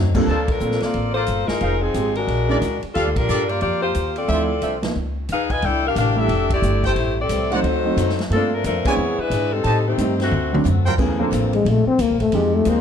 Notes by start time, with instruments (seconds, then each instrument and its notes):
Already playing: upright bass F#2, steel-string acoustic guitar D3 F#3 C4 D#4
0.15 grand piano G2 A#3 C4 D4 F4 A4, kick, crash
0.27 upright bass D2, saxophone section F3 A#3 D4 A4, trumpet section F4 A#4 C5 A5
0.48 saxophone section F3 D4 A4 A#4, kick, ride
0.60 upright bass A#1, grand piano A#3 C4 F4 A4, hi-hat pedal
0.71 snare
0.80 saxophone section A#3 F4 A4 D5, muted upright bass stroke, snare, ride
0.94 upright bass A1, ride
1.14 saxophone section A#3 F4 A4 C5, trumpet section F4 A#4 C5 D5
1.26 upright bass G1, hi-hat pedal, ride
1.46 saxophone section G#3 D#4 F4 A#4, muted upright bass stroke, snare
1.60 upright bass F1, trumpet section D#4 G#4 C5 F5, ride
1.81 saxophone section F3 C4 D#4 G#4
1.94 upright bass G#1, grand piano G#3 C4 D#4 G4, hi-hat pedal, ride
2.15 saxophone section G#3 D4 F#4 A#4, ride
2.27 upright bass A#1, ride
2.48 grand piano G#3 C#4 D4 E4, trumpet section D4 G#4 A#4 D5
2.62 upright bass C#2, hi-hat pedal, ride
2.82 muted upright bass stroke, ride
2.94 upright bass D#2, saxophone section G3 D4 F4 A4, trumpet section D4 G4 A4 F5, ride
3.07 upright bass D2
3.16 upright bass A#1, saxophone section G3 D4 F4 A#4, kick, ride
3.28 upright bass G2, trumpet section D4 G4 A4 D5, hi-hat pedal
3.49 saxophone section A#3 F4 G4 D5, ride
3.61 upright bass F2, saxophone section A#3 F4 G4 D5, ride
3.82 saxophone section A#3 F4 G4 C5
3.94 upright bass D#2, hi-hat pedal, ride
4.16 saxophone section C4 F4 A4 D5, ride
4.28 upright bass D2, grand piano F3 A3 C4 E4, trumpet section D4 F4 C5 E5, ride
4.62 upright bass C2, trumpet section D4 F4 C5 E5, hi-hat pedal, ride
4.82 grand piano F3 A#3 B3 D#4, snare, ride
4.96 upright bass C#2
5.29 upright bass D#2, saxophone section D#4 G#4 B4 F5, hi-hat pedal, ride
5.50 saxophone section F4 B4 D#5 G#5, kick, ride
5.62 upright bass C2, steel-string acoustic guitar C3 A3 D4 E4, saxophone section E4 A4 D5 G5, ride
5.86 saxophone section D4 G4 A#4 F5
5.95 upright bass A1, steel-string acoustic guitar C3 A3 D4 E4, saxophone section D4 G4 A#4 F5, hi-hat pedal, ride
6.16 grand piano G3 A3 D4 E4, saxophone section D4 G4 A4 E5
6.28 upright bass F1, steel-string acoustic guitar C3 A3 D4, ride
6.33 steel-string acoustic guitar E4
6.50 saxophone section A3 E4 G4 D5, kick, ride
6.62 upright bass G1, steel-string acoustic guitar C3 A3 D4 E4, grand piano G3 A3 D4 G4, hi-hat pedal
6.84 saxophone section A3 E4 G4 C5, trumpet section E4 A4 C5 G5, kick, ride
6.96 upright bass A1, steel-string acoustic guitar A2 G3 C4, ride
7.00 steel-string acoustic guitar E4
7.20 saxophone section C4 G4 A4 D5
7.29 upright bass C2, steel-string acoustic guitar A2 G3 C4 E4, hi-hat pedal, ride
7.51 grand piano F#3 A3 C4 D#4, saxophone section A3 D#4 F#4 C5, trumpet section D#4 C5 D5 F#5, ride
7.63 upright bass D2, steel-string acoustic guitar D3 F#3 C4 D#4, ride
7.85 grand piano F#3 A3 C4 D#4
7.96 upright bass F#2, steel-string acoustic guitar D3 F#3 C4 D#4, hi-hat pedal, ride
8.09 snare
8.19 snare, ride
8.30 upright bass G2, steel-string acoustic guitar G2 F3 A#3, saxophone section F3 A#3 D4 A4, grand piano A3 A#3 C4 F4, ride
8.34 steel-string acoustic guitar C4
8.54 saxophone section F3 A3 D4 A#4
8.64 upright bass F2, steel-string acoustic guitar G2 F3 A#3 C4, saxophone section F3 A3 D4 A#4, hi-hat pedal, ride
8.85 grand piano G#3 B3 C4 D4, saxophone section B3 E4 G#4 C#5, trumpet section E4 C5 D5 G#5, muted upright bass stroke, kick, ride
8.97 upright bass E2, steel-string acoustic guitar E3 C4 D4
9.01 steel-string acoustic guitar G#4
9.18 saxophone section G#3 D4 E4 B4, muted upright bass stroke
9.30 upright bass G#2, steel-string acoustic guitar E3 C4 D4, hi-hat pedal, ride
9.34 steel-string acoustic guitar G#4
9.53 saxophone section G3 C4 D#4 A4
9.64 upright bass A2, steel-string acoustic guitar A2 G3 C4, trumpet section G4 C5 D#5 A5, ride
9.69 steel-string acoustic guitar D#4
9.87 saxophone section D#3 A3 C4 G4
9.98 upright bass G2, steel-string acoustic guitar A2 G3 C4 D#4, grand piano G3 A3 C4 D#4, hi-hat pedal, ride
10.20 saxophone section D3 A3 C4 F#4, snare, ride
10.31 upright bass D2, steel-string acoustic guitar D3 A3 C4 F#4, high tom
10.53 grand piano F#3 A3 C4 D4, high tom
10.64 upright bass F#2, steel-string acoustic guitar D3 A3 C4 F#4, floor tom, hi-hat pedal
10.85 trumpet section G3 F4 A#4 C5 G5, floor tom
10.97 upright bass D2, steel-string acoustic guitar G2 F3 A#3 C4, grand piano E3 A3 B3 C#4 G#4, kick, crash
11.19 grand piano F3 A#3 C4 D4 A4, trombone section A#3 F4 A4 C5
11.31 upright bass A1, steel-string acoustic guitar G2 F3 A#3 C4, hi-hat pedal, ride
11.53 trombone G#3, ride
11.65 upright bass A#1, steel-string acoustic guitar G2 F3 A#3 C4, ride
11.69 trombone A3
11.86 trombone C4, muted upright bass stroke
11.98 upright bass D2, steel-string acoustic guitar G2 F3 A#3 C4, trombone A#3, hi-hat pedal, ride
12.10 upright bass A#1
12.20 upright bass G1, trombone A3, ride
12.32 steel-string acoustic guitar F2 D#3 G#3 C4, upright bass F2, grand piano F3 G#3 C4 D#4 G4, trombone G#3, ride
12.55 trombone A3
12.65 upright bass D#2, steel-string acoustic guitar F2 D#3 G#3 C4, trombone section G#3 D#4 F4 C5, hi-hat pedal, ride
12.69 trombone A#3